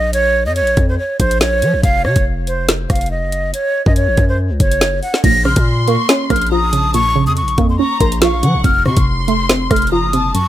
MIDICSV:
0, 0, Header, 1, 6, 480
1, 0, Start_track
1, 0, Key_signature, -5, "minor"
1, 0, Tempo, 425532
1, 150, Time_signature, 4, 2, 24, 8
1, 11823, End_track
2, 0, Start_track
2, 0, Title_t, "Violin section"
2, 0, Program_c, 0, 48
2, 6149, Note_on_c, 0, 84, 93
2, 7304, Note_off_c, 0, 84, 0
2, 7346, Note_on_c, 0, 82, 77
2, 7576, Note_off_c, 0, 82, 0
2, 7592, Note_on_c, 0, 81, 79
2, 7819, Note_off_c, 0, 81, 0
2, 8790, Note_on_c, 0, 82, 86
2, 9241, Note_off_c, 0, 82, 0
2, 9271, Note_on_c, 0, 77, 86
2, 9498, Note_off_c, 0, 77, 0
2, 9512, Note_on_c, 0, 78, 82
2, 9739, Note_off_c, 0, 78, 0
2, 9989, Note_on_c, 0, 84, 93
2, 11144, Note_off_c, 0, 84, 0
2, 11188, Note_on_c, 0, 82, 87
2, 11417, Note_off_c, 0, 82, 0
2, 11432, Note_on_c, 0, 81, 91
2, 11659, Note_off_c, 0, 81, 0
2, 11823, End_track
3, 0, Start_track
3, 0, Title_t, "Flute"
3, 0, Program_c, 1, 73
3, 0, Note_on_c, 1, 75, 93
3, 121, Note_off_c, 1, 75, 0
3, 151, Note_on_c, 1, 73, 116
3, 495, Note_off_c, 1, 73, 0
3, 519, Note_on_c, 1, 75, 89
3, 619, Note_off_c, 1, 75, 0
3, 628, Note_on_c, 1, 73, 87
3, 974, Note_off_c, 1, 73, 0
3, 1003, Note_on_c, 1, 72, 77
3, 1101, Note_off_c, 1, 72, 0
3, 1111, Note_on_c, 1, 73, 95
3, 1325, Note_off_c, 1, 73, 0
3, 1349, Note_on_c, 1, 72, 83
3, 1564, Note_off_c, 1, 72, 0
3, 1591, Note_on_c, 1, 73, 90
3, 2042, Note_off_c, 1, 73, 0
3, 2067, Note_on_c, 1, 77, 104
3, 2283, Note_off_c, 1, 77, 0
3, 2314, Note_on_c, 1, 73, 89
3, 2526, Note_off_c, 1, 73, 0
3, 2791, Note_on_c, 1, 72, 78
3, 3005, Note_off_c, 1, 72, 0
3, 3269, Note_on_c, 1, 77, 79
3, 3484, Note_off_c, 1, 77, 0
3, 3509, Note_on_c, 1, 75, 79
3, 3961, Note_off_c, 1, 75, 0
3, 3992, Note_on_c, 1, 73, 93
3, 4336, Note_off_c, 1, 73, 0
3, 4355, Note_on_c, 1, 75, 77
3, 4457, Note_off_c, 1, 75, 0
3, 4474, Note_on_c, 1, 73, 85
3, 4817, Note_off_c, 1, 73, 0
3, 4838, Note_on_c, 1, 72, 73
3, 4938, Note_off_c, 1, 72, 0
3, 5192, Note_on_c, 1, 73, 80
3, 5642, Note_off_c, 1, 73, 0
3, 5667, Note_on_c, 1, 78, 81
3, 5883, Note_off_c, 1, 78, 0
3, 5911, Note_on_c, 1, 94, 97
3, 6125, Note_off_c, 1, 94, 0
3, 6148, Note_on_c, 1, 89, 77
3, 6363, Note_off_c, 1, 89, 0
3, 6635, Note_on_c, 1, 85, 81
3, 6847, Note_off_c, 1, 85, 0
3, 7112, Note_on_c, 1, 89, 93
3, 7325, Note_off_c, 1, 89, 0
3, 7350, Note_on_c, 1, 87, 100
3, 7801, Note_off_c, 1, 87, 0
3, 7830, Note_on_c, 1, 85, 124
3, 8175, Note_off_c, 1, 85, 0
3, 8199, Note_on_c, 1, 87, 91
3, 8299, Note_off_c, 1, 87, 0
3, 8308, Note_on_c, 1, 85, 89
3, 8654, Note_off_c, 1, 85, 0
3, 8684, Note_on_c, 1, 84, 78
3, 8781, Note_off_c, 1, 84, 0
3, 8791, Note_on_c, 1, 85, 99
3, 9005, Note_off_c, 1, 85, 0
3, 9029, Note_on_c, 1, 84, 87
3, 9244, Note_off_c, 1, 84, 0
3, 9273, Note_on_c, 1, 85, 96
3, 9722, Note_off_c, 1, 85, 0
3, 9749, Note_on_c, 1, 89, 105
3, 9964, Note_off_c, 1, 89, 0
3, 9994, Note_on_c, 1, 85, 95
3, 10207, Note_off_c, 1, 85, 0
3, 10470, Note_on_c, 1, 84, 81
3, 10685, Note_off_c, 1, 84, 0
3, 10949, Note_on_c, 1, 89, 79
3, 11164, Note_off_c, 1, 89, 0
3, 11190, Note_on_c, 1, 87, 82
3, 11641, Note_off_c, 1, 87, 0
3, 11672, Note_on_c, 1, 85, 101
3, 11823, Note_off_c, 1, 85, 0
3, 11823, End_track
4, 0, Start_track
4, 0, Title_t, "Synth pluck"
4, 0, Program_c, 2, 84
4, 5909, Note_on_c, 2, 46, 93
4, 6150, Note_on_c, 2, 49, 74
4, 6630, Note_on_c, 2, 58, 89
4, 6871, Note_on_c, 2, 61, 91
4, 7095, Note_off_c, 2, 58, 0
4, 7109, Note_off_c, 2, 46, 0
4, 7109, Note_on_c, 2, 58, 80
4, 7350, Note_off_c, 2, 49, 0
4, 7350, Note_on_c, 2, 53, 98
4, 7589, Note_on_c, 2, 49, 75
4, 7830, Note_on_c, 2, 46, 94
4, 8056, Note_off_c, 2, 49, 0
4, 8069, Note_on_c, 2, 49, 85
4, 8070, Note_off_c, 2, 61, 0
4, 8309, Note_off_c, 2, 58, 0
4, 8550, Note_off_c, 2, 53, 0
4, 8550, Note_on_c, 2, 58, 101
4, 8790, Note_on_c, 2, 61, 83
4, 9016, Note_off_c, 2, 58, 0
4, 9030, Note_off_c, 2, 46, 0
4, 9030, Note_on_c, 2, 58, 76
4, 9269, Note_off_c, 2, 49, 0
4, 9269, Note_on_c, 2, 53, 91
4, 9510, Note_on_c, 2, 49, 76
4, 9750, Note_off_c, 2, 49, 0
4, 9750, Note_off_c, 2, 53, 0
4, 9750, Note_off_c, 2, 58, 0
4, 9750, Note_off_c, 2, 61, 0
4, 9750, Note_on_c, 2, 41, 88
4, 9990, Note_on_c, 2, 48, 82
4, 10469, Note_on_c, 2, 57, 107
4, 10711, Note_on_c, 2, 60, 88
4, 10937, Note_off_c, 2, 57, 0
4, 10950, Note_off_c, 2, 41, 0
4, 10951, Note_on_c, 2, 57, 90
4, 11190, Note_off_c, 2, 48, 0
4, 11190, Note_on_c, 2, 53, 99
4, 11430, Note_on_c, 2, 48, 79
4, 11670, Note_off_c, 2, 48, 0
4, 11670, Note_off_c, 2, 53, 0
4, 11670, Note_off_c, 2, 57, 0
4, 11670, Note_off_c, 2, 60, 0
4, 11670, Note_on_c, 2, 42, 89
4, 11823, Note_off_c, 2, 42, 0
4, 11823, End_track
5, 0, Start_track
5, 0, Title_t, "808-style bass"
5, 0, Program_c, 3, 38
5, 0, Note_on_c, 3, 34, 105
5, 517, Note_on_c, 3, 41, 98
5, 534, Note_off_c, 3, 34, 0
5, 693, Note_on_c, 3, 34, 98
5, 710, Note_off_c, 3, 41, 0
5, 861, Note_off_c, 3, 34, 0
5, 871, Note_on_c, 3, 41, 102
5, 1101, Note_off_c, 3, 41, 0
5, 1350, Note_on_c, 3, 34, 105
5, 1829, Note_on_c, 3, 53, 104
5, 1846, Note_off_c, 3, 34, 0
5, 1957, Note_on_c, 3, 34, 103
5, 1974, Note_off_c, 3, 53, 0
5, 2064, Note_off_c, 3, 34, 0
5, 2070, Note_on_c, 3, 29, 109
5, 2309, Note_on_c, 3, 48, 101
5, 2326, Note_off_c, 3, 29, 0
5, 2430, Note_off_c, 3, 48, 0
5, 2438, Note_on_c, 3, 29, 102
5, 3237, Note_off_c, 3, 29, 0
5, 3271, Note_on_c, 3, 29, 108
5, 3637, Note_on_c, 3, 30, 98
5, 3653, Note_off_c, 3, 29, 0
5, 3972, Note_off_c, 3, 30, 0
5, 4357, Note_on_c, 3, 42, 109
5, 4597, Note_on_c, 3, 33, 102
5, 4614, Note_off_c, 3, 42, 0
5, 4704, Note_off_c, 3, 33, 0
5, 4711, Note_on_c, 3, 42, 105
5, 5077, Note_on_c, 3, 37, 98
5, 5094, Note_off_c, 3, 42, 0
5, 5184, Note_off_c, 3, 37, 0
5, 5190, Note_on_c, 3, 30, 101
5, 5651, Note_off_c, 3, 30, 0
5, 5909, Note_on_c, 3, 34, 111
5, 6262, Note_off_c, 3, 34, 0
5, 6277, Note_on_c, 3, 46, 107
5, 6738, Note_off_c, 3, 46, 0
5, 7110, Note_on_c, 3, 34, 108
5, 8197, Note_on_c, 3, 41, 102
5, 8214, Note_off_c, 3, 34, 0
5, 8373, Note_on_c, 3, 34, 104
5, 8390, Note_off_c, 3, 41, 0
5, 8541, Note_off_c, 3, 34, 0
5, 8551, Note_on_c, 3, 41, 106
5, 8781, Note_off_c, 3, 41, 0
5, 9031, Note_on_c, 3, 34, 107
5, 9510, Note_on_c, 3, 53, 104
5, 9527, Note_off_c, 3, 34, 0
5, 9638, Note_on_c, 3, 34, 98
5, 9655, Note_off_c, 3, 53, 0
5, 9744, Note_off_c, 3, 34, 0
5, 9750, Note_on_c, 3, 29, 108
5, 9990, Note_on_c, 3, 48, 101
5, 10007, Note_off_c, 3, 29, 0
5, 10111, Note_off_c, 3, 48, 0
5, 10117, Note_on_c, 3, 29, 103
5, 10917, Note_off_c, 3, 29, 0
5, 10950, Note_on_c, 3, 29, 103
5, 11317, Note_on_c, 3, 30, 102
5, 11334, Note_off_c, 3, 29, 0
5, 11652, Note_off_c, 3, 30, 0
5, 11823, End_track
6, 0, Start_track
6, 0, Title_t, "Drums"
6, 150, Note_on_c, 9, 42, 82
6, 263, Note_off_c, 9, 42, 0
6, 630, Note_on_c, 9, 42, 53
6, 743, Note_off_c, 9, 42, 0
6, 757, Note_on_c, 9, 42, 49
6, 868, Note_off_c, 9, 42, 0
6, 868, Note_on_c, 9, 42, 58
6, 871, Note_on_c, 9, 36, 104
6, 981, Note_off_c, 9, 42, 0
6, 984, Note_off_c, 9, 36, 0
6, 1349, Note_on_c, 9, 42, 82
6, 1351, Note_on_c, 9, 36, 92
6, 1462, Note_off_c, 9, 42, 0
6, 1463, Note_off_c, 9, 36, 0
6, 1479, Note_on_c, 9, 42, 75
6, 1589, Note_on_c, 9, 38, 117
6, 1592, Note_off_c, 9, 42, 0
6, 1702, Note_off_c, 9, 38, 0
6, 1830, Note_on_c, 9, 42, 77
6, 1943, Note_off_c, 9, 42, 0
6, 2070, Note_on_c, 9, 36, 123
6, 2070, Note_on_c, 9, 42, 86
6, 2182, Note_off_c, 9, 36, 0
6, 2183, Note_off_c, 9, 42, 0
6, 2310, Note_on_c, 9, 37, 71
6, 2422, Note_off_c, 9, 37, 0
6, 2434, Note_on_c, 9, 42, 90
6, 2438, Note_on_c, 9, 36, 103
6, 2546, Note_off_c, 9, 42, 0
6, 2550, Note_off_c, 9, 36, 0
6, 2788, Note_on_c, 9, 42, 59
6, 2901, Note_off_c, 9, 42, 0
6, 3030, Note_on_c, 9, 38, 111
6, 3143, Note_off_c, 9, 38, 0
6, 3270, Note_on_c, 9, 36, 95
6, 3270, Note_on_c, 9, 37, 92
6, 3270, Note_on_c, 9, 42, 80
6, 3333, Note_off_c, 9, 42, 0
6, 3333, Note_on_c, 9, 42, 69
6, 3382, Note_off_c, 9, 37, 0
6, 3383, Note_off_c, 9, 36, 0
6, 3397, Note_off_c, 9, 42, 0
6, 3397, Note_on_c, 9, 42, 56
6, 3454, Note_off_c, 9, 42, 0
6, 3454, Note_on_c, 9, 42, 45
6, 3566, Note_off_c, 9, 42, 0
6, 3749, Note_on_c, 9, 42, 78
6, 3862, Note_off_c, 9, 42, 0
6, 3990, Note_on_c, 9, 42, 86
6, 4103, Note_off_c, 9, 42, 0
6, 4357, Note_on_c, 9, 36, 102
6, 4467, Note_on_c, 9, 42, 63
6, 4470, Note_off_c, 9, 36, 0
6, 4580, Note_off_c, 9, 42, 0
6, 4708, Note_on_c, 9, 42, 59
6, 4711, Note_on_c, 9, 36, 101
6, 4821, Note_off_c, 9, 42, 0
6, 4823, Note_off_c, 9, 36, 0
6, 5189, Note_on_c, 9, 42, 88
6, 5190, Note_on_c, 9, 36, 92
6, 5302, Note_off_c, 9, 42, 0
6, 5303, Note_off_c, 9, 36, 0
6, 5319, Note_on_c, 9, 42, 78
6, 5429, Note_on_c, 9, 38, 117
6, 5431, Note_off_c, 9, 42, 0
6, 5542, Note_off_c, 9, 38, 0
6, 5669, Note_on_c, 9, 46, 55
6, 5782, Note_off_c, 9, 46, 0
6, 5797, Note_on_c, 9, 38, 72
6, 5909, Note_on_c, 9, 36, 127
6, 5909, Note_on_c, 9, 42, 88
6, 5909, Note_on_c, 9, 49, 101
6, 5910, Note_off_c, 9, 38, 0
6, 6022, Note_off_c, 9, 36, 0
6, 6022, Note_off_c, 9, 42, 0
6, 6022, Note_off_c, 9, 49, 0
6, 6150, Note_on_c, 9, 37, 70
6, 6262, Note_off_c, 9, 37, 0
6, 6273, Note_on_c, 9, 42, 93
6, 6278, Note_on_c, 9, 36, 105
6, 6386, Note_off_c, 9, 42, 0
6, 6390, Note_off_c, 9, 36, 0
6, 6628, Note_on_c, 9, 42, 60
6, 6740, Note_off_c, 9, 42, 0
6, 6869, Note_on_c, 9, 38, 118
6, 6982, Note_off_c, 9, 38, 0
6, 7109, Note_on_c, 9, 37, 93
6, 7109, Note_on_c, 9, 42, 83
6, 7110, Note_on_c, 9, 36, 97
6, 7173, Note_off_c, 9, 42, 0
6, 7173, Note_on_c, 9, 42, 74
6, 7222, Note_off_c, 9, 37, 0
6, 7223, Note_off_c, 9, 36, 0
6, 7237, Note_off_c, 9, 42, 0
6, 7237, Note_on_c, 9, 42, 57
6, 7293, Note_off_c, 9, 42, 0
6, 7293, Note_on_c, 9, 42, 48
6, 7406, Note_off_c, 9, 42, 0
6, 7589, Note_on_c, 9, 42, 79
6, 7702, Note_off_c, 9, 42, 0
6, 7830, Note_on_c, 9, 42, 86
6, 7943, Note_off_c, 9, 42, 0
6, 8310, Note_on_c, 9, 42, 54
6, 8422, Note_off_c, 9, 42, 0
6, 8437, Note_on_c, 9, 42, 52
6, 8548, Note_off_c, 9, 42, 0
6, 8548, Note_on_c, 9, 42, 59
6, 8551, Note_on_c, 9, 36, 104
6, 8661, Note_off_c, 9, 42, 0
6, 8664, Note_off_c, 9, 36, 0
6, 9029, Note_on_c, 9, 42, 87
6, 9031, Note_on_c, 9, 36, 93
6, 9142, Note_off_c, 9, 42, 0
6, 9143, Note_off_c, 9, 36, 0
6, 9159, Note_on_c, 9, 42, 76
6, 9269, Note_on_c, 9, 38, 120
6, 9272, Note_off_c, 9, 42, 0
6, 9382, Note_off_c, 9, 38, 0
6, 9509, Note_on_c, 9, 42, 78
6, 9622, Note_off_c, 9, 42, 0
6, 9750, Note_on_c, 9, 36, 127
6, 9750, Note_on_c, 9, 42, 89
6, 9862, Note_off_c, 9, 36, 0
6, 9863, Note_off_c, 9, 42, 0
6, 9990, Note_on_c, 9, 37, 73
6, 10103, Note_off_c, 9, 37, 0
6, 10113, Note_on_c, 9, 42, 91
6, 10117, Note_on_c, 9, 36, 103
6, 10226, Note_off_c, 9, 42, 0
6, 10230, Note_off_c, 9, 36, 0
6, 10468, Note_on_c, 9, 42, 60
6, 10581, Note_off_c, 9, 42, 0
6, 10710, Note_on_c, 9, 38, 121
6, 10823, Note_off_c, 9, 38, 0
6, 10949, Note_on_c, 9, 37, 95
6, 10950, Note_on_c, 9, 42, 80
6, 10951, Note_on_c, 9, 36, 94
6, 11013, Note_off_c, 9, 42, 0
6, 11013, Note_on_c, 9, 42, 72
6, 11062, Note_off_c, 9, 37, 0
6, 11063, Note_off_c, 9, 36, 0
6, 11077, Note_off_c, 9, 42, 0
6, 11077, Note_on_c, 9, 42, 58
6, 11134, Note_off_c, 9, 42, 0
6, 11134, Note_on_c, 9, 42, 48
6, 11246, Note_off_c, 9, 42, 0
6, 11430, Note_on_c, 9, 42, 77
6, 11543, Note_off_c, 9, 42, 0
6, 11670, Note_on_c, 9, 42, 89
6, 11783, Note_off_c, 9, 42, 0
6, 11823, End_track
0, 0, End_of_file